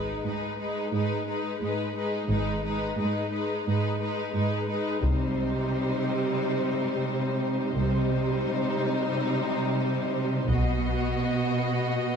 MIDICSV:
0, 0, Header, 1, 7, 480
1, 0, Start_track
1, 0, Tempo, 684151
1, 1611, Time_signature, 4, 2, 24, 8
1, 8533, End_track
2, 0, Start_track
2, 0, Title_t, "Violin section"
2, 0, Program_c, 0, 48
2, 0, Note_on_c, 0, 71, 33
2, 167, Note_off_c, 0, 71, 0
2, 175, Note_on_c, 0, 71, 33
2, 400, Note_off_c, 0, 71, 0
2, 408, Note_on_c, 0, 71, 35
2, 644, Note_off_c, 0, 71, 0
2, 658, Note_on_c, 0, 71, 42
2, 888, Note_off_c, 0, 71, 0
2, 897, Note_on_c, 0, 71, 37
2, 1128, Note_off_c, 0, 71, 0
2, 1136, Note_on_c, 0, 71, 43
2, 1365, Note_off_c, 0, 71, 0
2, 1373, Note_on_c, 0, 71, 36
2, 1595, Note_off_c, 0, 71, 0
2, 1604, Note_on_c, 0, 71, 45
2, 1840, Note_off_c, 0, 71, 0
2, 1849, Note_on_c, 0, 71, 39
2, 2077, Note_off_c, 0, 71, 0
2, 2085, Note_on_c, 0, 71, 40
2, 2313, Note_off_c, 0, 71, 0
2, 2321, Note_on_c, 0, 71, 38
2, 2554, Note_off_c, 0, 71, 0
2, 2563, Note_on_c, 0, 71, 47
2, 2794, Note_off_c, 0, 71, 0
2, 2803, Note_on_c, 0, 71, 40
2, 3039, Note_off_c, 0, 71, 0
2, 3048, Note_on_c, 0, 71, 44
2, 3280, Note_off_c, 0, 71, 0
2, 3288, Note_on_c, 0, 71, 39
2, 3525, Note_off_c, 0, 71, 0
2, 3526, Note_on_c, 0, 72, 54
2, 5420, Note_off_c, 0, 72, 0
2, 5447, Note_on_c, 0, 72, 59
2, 7333, Note_off_c, 0, 72, 0
2, 7359, Note_on_c, 0, 75, 56
2, 8533, Note_off_c, 0, 75, 0
2, 8533, End_track
3, 0, Start_track
3, 0, Title_t, "Violin section"
3, 0, Program_c, 1, 48
3, 0, Note_on_c, 1, 63, 33
3, 165, Note_off_c, 1, 63, 0
3, 180, Note_on_c, 1, 63, 35
3, 410, Note_off_c, 1, 63, 0
3, 430, Note_on_c, 1, 63, 36
3, 651, Note_off_c, 1, 63, 0
3, 659, Note_on_c, 1, 63, 41
3, 891, Note_off_c, 1, 63, 0
3, 905, Note_on_c, 1, 63, 34
3, 1134, Note_off_c, 1, 63, 0
3, 1145, Note_on_c, 1, 63, 36
3, 1370, Note_off_c, 1, 63, 0
3, 1378, Note_on_c, 1, 63, 39
3, 1610, Note_off_c, 1, 63, 0
3, 1617, Note_on_c, 1, 63, 42
3, 1846, Note_off_c, 1, 63, 0
3, 1855, Note_on_c, 1, 63, 41
3, 2089, Note_off_c, 1, 63, 0
3, 2096, Note_on_c, 1, 63, 40
3, 2330, Note_off_c, 1, 63, 0
3, 2337, Note_on_c, 1, 63, 40
3, 2569, Note_off_c, 1, 63, 0
3, 2577, Note_on_c, 1, 63, 44
3, 2810, Note_off_c, 1, 63, 0
3, 2824, Note_on_c, 1, 63, 42
3, 3049, Note_off_c, 1, 63, 0
3, 3058, Note_on_c, 1, 63, 41
3, 3290, Note_off_c, 1, 63, 0
3, 3300, Note_on_c, 1, 63, 44
3, 3526, Note_off_c, 1, 63, 0
3, 3535, Note_on_c, 1, 63, 46
3, 5425, Note_off_c, 1, 63, 0
3, 5458, Note_on_c, 1, 63, 57
3, 7339, Note_off_c, 1, 63, 0
3, 7375, Note_on_c, 1, 66, 51
3, 8533, Note_off_c, 1, 66, 0
3, 8533, End_track
4, 0, Start_track
4, 0, Title_t, "Viola section"
4, 0, Program_c, 2, 48
4, 0, Note_on_c, 2, 56, 31
4, 154, Note_off_c, 2, 56, 0
4, 162, Note_on_c, 2, 56, 37
4, 401, Note_off_c, 2, 56, 0
4, 409, Note_on_c, 2, 56, 36
4, 642, Note_off_c, 2, 56, 0
4, 650, Note_on_c, 2, 56, 38
4, 876, Note_off_c, 2, 56, 0
4, 885, Note_on_c, 2, 56, 36
4, 1116, Note_off_c, 2, 56, 0
4, 1124, Note_on_c, 2, 56, 38
4, 1363, Note_off_c, 2, 56, 0
4, 1375, Note_on_c, 2, 56, 44
4, 1596, Note_off_c, 2, 56, 0
4, 1604, Note_on_c, 2, 56, 44
4, 1843, Note_off_c, 2, 56, 0
4, 1851, Note_on_c, 2, 56, 39
4, 2083, Note_off_c, 2, 56, 0
4, 2091, Note_on_c, 2, 56, 41
4, 2325, Note_off_c, 2, 56, 0
4, 2333, Note_on_c, 2, 56, 40
4, 2565, Note_off_c, 2, 56, 0
4, 2573, Note_on_c, 2, 56, 44
4, 2808, Note_off_c, 2, 56, 0
4, 2815, Note_on_c, 2, 56, 45
4, 3043, Note_off_c, 2, 56, 0
4, 3052, Note_on_c, 2, 56, 47
4, 3283, Note_off_c, 2, 56, 0
4, 3291, Note_on_c, 2, 56, 45
4, 3526, Note_off_c, 2, 56, 0
4, 3528, Note_on_c, 2, 55, 47
4, 5421, Note_off_c, 2, 55, 0
4, 5450, Note_on_c, 2, 55, 58
4, 7334, Note_off_c, 2, 55, 0
4, 7359, Note_on_c, 2, 59, 47
4, 8533, Note_off_c, 2, 59, 0
4, 8533, End_track
5, 0, Start_track
5, 0, Title_t, "Cello section"
5, 0, Program_c, 3, 48
5, 0, Note_on_c, 3, 44, 52
5, 94, Note_off_c, 3, 44, 0
5, 174, Note_on_c, 3, 44, 49
5, 576, Note_off_c, 3, 44, 0
5, 654, Note_on_c, 3, 44, 51
5, 1058, Note_off_c, 3, 44, 0
5, 1134, Note_on_c, 3, 44, 45
5, 1537, Note_off_c, 3, 44, 0
5, 1616, Note_on_c, 3, 44, 56
5, 2018, Note_off_c, 3, 44, 0
5, 2093, Note_on_c, 3, 44, 55
5, 2497, Note_off_c, 3, 44, 0
5, 2580, Note_on_c, 3, 44, 59
5, 2980, Note_off_c, 3, 44, 0
5, 3055, Note_on_c, 3, 44, 56
5, 3457, Note_off_c, 3, 44, 0
5, 3530, Note_on_c, 3, 48, 58
5, 5422, Note_off_c, 3, 48, 0
5, 5455, Note_on_c, 3, 48, 56
5, 7337, Note_off_c, 3, 48, 0
5, 7367, Note_on_c, 3, 47, 60
5, 8533, Note_off_c, 3, 47, 0
5, 8533, End_track
6, 0, Start_track
6, 0, Title_t, "Double bass section"
6, 0, Program_c, 4, 48
6, 0, Note_on_c, 4, 32, 49
6, 94, Note_off_c, 4, 32, 0
6, 1611, Note_on_c, 4, 32, 56
6, 2015, Note_off_c, 4, 32, 0
6, 3532, Note_on_c, 4, 36, 50
6, 3983, Note_off_c, 4, 36, 0
6, 5456, Note_on_c, 4, 36, 56
6, 5903, Note_off_c, 4, 36, 0
6, 7360, Note_on_c, 4, 35, 52
6, 7814, Note_off_c, 4, 35, 0
6, 8533, End_track
7, 0, Start_track
7, 0, Title_t, "Taiko and cinematic ensemble drums"
7, 3530, Note_on_c, 9, 41, 48
7, 3600, Note_off_c, 9, 41, 0
7, 7363, Note_on_c, 9, 41, 44
7, 7433, Note_off_c, 9, 41, 0
7, 8533, End_track
0, 0, End_of_file